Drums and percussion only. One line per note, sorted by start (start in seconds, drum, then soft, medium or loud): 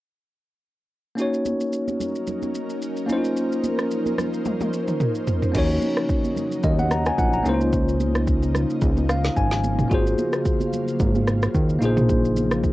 1.18 shaker medium
1.34 shaker medium
1.46 high conga medium
1.46 shaker medium
1.60 shaker medium
1.73 shaker medium
1.88 high conga medium
1.88 shaker soft
2.00 low conga medium
2.00 shaker medium
2.15 shaker soft
2.27 low conga medium
2.27 shaker medium
2.42 high conga medium
2.42 shaker soft
2.55 shaker medium
2.69 shaker soft
2.82 shaker medium
2.97 shaker soft
3.09 high conga medium
3.09 shaker loud
3.24 shaker medium
3.37 shaker medium
3.52 shaker medium
3.64 high conga medium
3.64 shaker medium
3.79 cross-stick medium
3.79 shaker medium
3.91 shaker medium
4.06 high conga medium
4.06 shaker soft
4.18 cross-stick medium
4.18 low conga medium
4.18 shaker medium
4.34 shaker soft
4.45 high tom medium
4.45 low conga medium
4.45 shaker medium
4.60 high tom soft
4.60 high conga medium
4.60 shaker soft
4.73 shaker medium
4.88 mid tom medium
4.88 shaker soft
5.00 mid tom medium
5.00 shaker medium
5.15 shaker soft
5.27 floor tom medium
5.27 high conga medium
5.27 shaker loud
5.42 floor tom medium
5.42 shaker medium
5.55 kick loud
5.55 crash medium
5.55 shaker medium
5.70 shaker medium
5.82 high conga medium
5.82 shaker medium
5.97 cross-stick medium
5.97 shaker medium
6.09 kick loud
6.09 shaker medium
6.24 high conga medium
6.24 shaker medium
6.36 low conga medium
6.36 shaker medium
6.52 shaker soft
6.63 kick loud
6.63 low conga medium
6.63 shaker medium
6.79 high conga medium
6.79 shaker soft
6.91 cross-stick medium
6.91 shaker medium
7.06 cross-stick medium
7.06 shaker medium
7.18 kick medium
7.18 shaker medium
7.33 shaker soft
7.45 high conga medium
7.45 shaker loud
7.61 shaker medium
7.73 kick loud
7.73 shaker medium
7.88 shaker medium
8.00 high conga medium
8.00 shaker medium
8.15 cross-stick medium
8.15 shaker medium
8.27 kick loud
8.27 shaker medium
8.42 high conga medium
8.42 shaker medium
8.55 cross-stick medium
8.55 low conga medium
8.55 shaker medium
8.70 shaker medium
8.81 kick loud
8.81 low conga medium
8.81 shaker medium
8.97 high conga medium
8.97 shaker soft
9.09 cross-stick loud
9.09 shaker medium
9.24 snare medium
9.24 shaker medium
9.36 kick medium
9.36 shaker medium
9.51 snare medium
9.51 shaker soft
9.64 high conga medium
9.64 shaker loud
9.79 mid tom medium
9.79 shaker medium
9.91 kick loud
9.91 shaker medium
10.07 shaker medium
10.18 high conga medium
10.18 shaker medium
10.33 cross-stick medium
10.33 shaker medium
10.45 kick loud
10.45 shaker medium
10.60 high conga medium
10.60 shaker medium
10.73 low conga medium
10.73 shaker medium
10.88 shaker soft
11.00 kick loud
11.00 low conga medium
11.00 shaker medium
11.15 high conga medium
11.15 shaker soft
11.27 cross-stick medium
11.27 shaker medium
11.42 cross-stick loud
11.42 shaker medium
11.55 kick medium
11.55 shaker medium
11.69 shaker soft
11.82 high conga medium
11.82 shaker loud
11.97 mid tom medium
11.97 shaker medium
12.09 kick loud
12.09 low conga medium
12.09 shaker medium
12.25 shaker medium
12.37 high conga medium
12.37 shaker medium
12.51 cross-stick loud
12.51 shaker medium
12.64 kick loud
12.64 shaker medium